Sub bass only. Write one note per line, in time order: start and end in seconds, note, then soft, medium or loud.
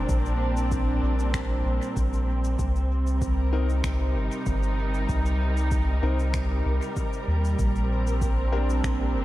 0.09 1.00 A#1 medium
1.03 1.62 A#1 loud
1.65 1.80 A#1 medium
1.96 2.56 A#1 loud
2.59 3.81 C2 medium
3.84 4.16 C2 medium
4.15 4.30 G1 medium
4.47 5.06 G1 medium
5.09 6.00 C2 loud
6.03 6.62 C2 loud
6.66 6.80 C2 medium
7.28 7.56 D#2 medium
7.59 8.81 A#1 medium
9.16 9.25 F1 medium